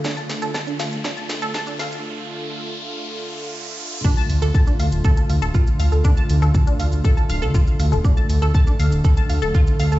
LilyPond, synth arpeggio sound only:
\new Staff \with { instrumentName = "Synth arpeggio sound" } { \time 4/4 \key d \minor \tempo 4 = 120 d'16 a''16 r16 a'16 a''16 d'16 f''16 r16 d'16 a''16 r16 a'16 a''16 d'16 f''16 r16 | r1 | d'16 a''16 r16 a'16 a''16 d'16 f''16 r16 a'16 a''16 f''16 a'16 f'16 r16 f''16 a'16 | d'16 a''16 r16 a'16 a''16 d'16 f''16 r16 a'16 a''16 f''16 a'16 f'16 r16 f''16 a'16 |
d'16 a''16 r16 a'16 a''16 d'16 f''16 r16 a'16 a''16 f''16 a'16 f'16 r16 f''16 a'16 | }